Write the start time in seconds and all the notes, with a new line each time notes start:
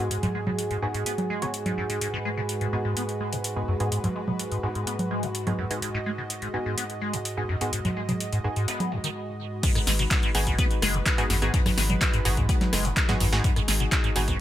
Already playing: G#2 G#3 F#4 G#4 D#5 G#5
0.11 G#2, closed hi-hat
0.23 G#2, snare, closed hi-hat, low conga
0.35 G#3, closed hi-hat
0.47 B2, low conga
0.59 closed hi-hat
0.71 G#2, closed hi-hat
0.82 G#2 B3 D#4 F#4 G#4, snare, closed hi-hat
0.94 G#2, closed hi-hat
1.06 B3, closed hi-hat
1.18 closed hi-hat, low conga
1.30 G#3, closed hi-hat
1.42 G#2 B3 D#4 F#4 C#5, closed hi-hat
1.54 closed hi-hat
1.66 G#2, closed hi-hat, low conga
1.78 F#2, closed hi-hat
1.90 G#2, closed hi-hat
2.01 G#2 B4, closed hi-hat
2.14 G#2
2.25 G#3, closed hi-hat
2.37 B2, closed hi-hat
2.49 closed hi-hat
2.61 G#2, closed hi-hat
2.73 G#2 B3 D#4 F#4 G#4, closed hi-hat
2.85 G#2, closed hi-hat
2.97 B3, closed hi-hat
3.09 closed hi-hat
3.20 G#3, closed hi-hat
3.33 G#2, closed hi-hat
3.44 closed hi-hat
3.56 G#2 B3 D#4 F#4 G#4
3.68 F#2, open hi-hat
3.80 G#2 B3 D#4 F#4 G#4, closed hi-hat
3.92 G#2, closed hi-hat
4.04 G#2, snare, closed hi-hat, low conga
4.16 G#3, closed hi-hat
4.28 B2, low conga
4.39 closed hi-hat
4.52 G#2, closed hi-hat
4.63 G#2 B3 D#4 F#4 G#4, snare, closed hi-hat
4.75 G#2, closed hi-hat
4.87 B3, closed hi-hat
4.99 closed hi-hat, low conga
5.11 G#3, closed hi-hat
5.23 G#2, closed hi-hat
5.35 closed hi-hat
5.47 G#2 B3 D#4 F#4 G#4, closed hi-hat, low conga
5.58 F#2, closed hi-hat
5.71 G#2 B3 D#4 F#4 G#4, closed hi-hat
5.82 G#2 D#5, closed hi-hat
5.94 G#2, closed hi-hat
6.06 G#3, closed hi-hat
6.18 B2, closed hi-hat
6.30 closed hi-hat
6.42 G#2, closed hi-hat
6.54 G#2 B3 D#4 F#4 G#4, closed hi-hat
6.66 G#2, closed hi-hat
6.78 B3, closed hi-hat
6.90 closed hi-hat
7.01 G#3, closed hi-hat
7.13 G#2, closed hi-hat
7.25 closed hi-hat
7.37 G#2 B3 D#4 F#4 G#4
7.49 F#2, open hi-hat
7.61 G#2 B3 D#4 F#4 G#4, closed hi-hat
7.73 G#2, closed hi-hat
7.85 G#2, snare, closed hi-hat, low conga
7.97 G#3, closed hi-hat
8.09 B2, closed hi-hat, low conga
8.20 closed hi-hat
8.33 G#2, closed hi-hat
8.44 G#2 B3 D#4 F#4 G#4
8.56 G#2, closed hi-hat
8.68 B3, snare, closed hi-hat
8.80 closed hi-hat, low conga
8.92 F#2, closed hi-hat
9.04 D#3, closed hi-hat
9.63 G#2 G#3 D#4 F#4 B4, kick, closed hi-hat, crash
9.75 G#2, cross-stick, closed hi-hat
9.87 G#1 G#3, snare, closed hi-hat, open hi-hat
9.99 B2, closed hi-hat
10.11 kick, snare, clap, closed hi-hat
10.23 G#2, closed hi-hat
10.35 G#1 G#2 B3 D#4 F#4 G#4, closed hi-hat, open hi-hat
10.47 G#2, kick, closed hi-hat
10.59 B3, kick, closed hi-hat
10.71 closed hi-hat
10.82 F#1 G#3, cross-stick, snare, closed hi-hat, open hi-hat
10.94 G#2, closed hi-hat
11.06 kick, snare, clap, closed hi-hat
11.18 G#2 B3 D#4 F#4 G#4, closed hi-hat
11.30 G#1 F#2, snare, open hi-hat
11.42 G#2 B3 D#4 F#4 G#4, closed hi-hat
11.54 G#2, kick, closed hi-hat
11.66 G#2, cross-stick, snare, open hi-hat, low conga
11.78 G#1 G#3, snare, closed hi-hat, open hi-hat
11.90 B2, closed hi-hat, low conga
12.01 kick, snare, clap, closed hi-hat
12.13 G#2, closed hi-hat
12.25 G#1 G#2 B3 D#4 F#4 G#4, snare, closed hi-hat, open hi-hat
12.37 G#2, kick, closed hi-hat
12.49 B3, kick, closed hi-hat
12.61 snare, closed hi-hat, low conga
12.73 F#1 G#3, cross-stick, snare, closed hi-hat, open hi-hat
12.85 G#2, closed hi-hat
12.97 kick, snare, clap, closed hi-hat
13.09 G#2 B3 D#4 F#4 G#4, snare, closed hi-hat, low conga
13.20 G#1 F#2, closed hi-hat, open hi-hat
13.33 G#2 B3 D#4 F#4 G#4, snare, closed hi-hat
13.44 G#2 G#4, kick, closed hi-hat
13.56 G#2, cross-stick, closed hi-hat
13.68 G#1 G#3, snare, closed hi-hat, open hi-hat
13.80 B2, closed hi-hat
13.92 kick, snare, clap, closed hi-hat
14.04 G#2, closed hi-hat
14.16 G#1 G#2 B3 D#4 F#4 G#4, closed hi-hat, open hi-hat
14.28 G#2, kick, closed hi-hat